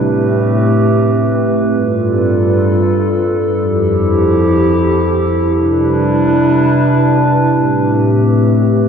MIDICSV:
0, 0, Header, 1, 2, 480
1, 0, Start_track
1, 0, Key_signature, 0, "minor"
1, 0, Tempo, 500000
1, 8530, End_track
2, 0, Start_track
2, 0, Title_t, "Ambient pad"
2, 0, Program_c, 0, 92
2, 0, Note_on_c, 0, 45, 81
2, 0, Note_on_c, 0, 57, 75
2, 0, Note_on_c, 0, 60, 73
2, 0, Note_on_c, 0, 67, 76
2, 0, Note_on_c, 0, 71, 87
2, 1592, Note_off_c, 0, 45, 0
2, 1592, Note_off_c, 0, 57, 0
2, 1592, Note_off_c, 0, 60, 0
2, 1592, Note_off_c, 0, 67, 0
2, 1610, Note_on_c, 0, 69, 73
2, 1611, Note_on_c, 0, 43, 82
2, 1611, Note_on_c, 0, 55, 75
2, 1611, Note_on_c, 0, 65, 76
2, 3432, Note_off_c, 0, 71, 0
2, 3451, Note_off_c, 0, 43, 0
2, 3451, Note_off_c, 0, 55, 0
2, 3451, Note_off_c, 0, 65, 0
2, 3467, Note_on_c, 0, 53, 74
2, 3467, Note_on_c, 0, 64, 72
2, 3467, Note_on_c, 0, 67, 75
2, 3468, Note_on_c, 0, 41, 81
2, 5290, Note_off_c, 0, 69, 0
2, 5307, Note_off_c, 0, 64, 0
2, 5307, Note_off_c, 0, 67, 0
2, 5308, Note_off_c, 0, 41, 0
2, 5308, Note_off_c, 0, 53, 0
2, 5326, Note_on_c, 0, 48, 81
2, 5326, Note_on_c, 0, 55, 76
2, 5326, Note_on_c, 0, 64, 74
2, 5326, Note_on_c, 0, 71, 89
2, 5327, Note_on_c, 0, 62, 75
2, 7166, Note_off_c, 0, 48, 0
2, 7166, Note_off_c, 0, 55, 0
2, 7166, Note_off_c, 0, 62, 0
2, 7166, Note_off_c, 0, 64, 0
2, 7186, Note_on_c, 0, 45, 85
2, 7186, Note_on_c, 0, 57, 76
2, 7186, Note_on_c, 0, 60, 74
2, 7187, Note_on_c, 0, 67, 79
2, 8530, Note_off_c, 0, 45, 0
2, 8530, Note_off_c, 0, 57, 0
2, 8530, Note_off_c, 0, 60, 0
2, 8530, Note_off_c, 0, 67, 0
2, 8530, Note_off_c, 0, 71, 0
2, 8530, End_track
0, 0, End_of_file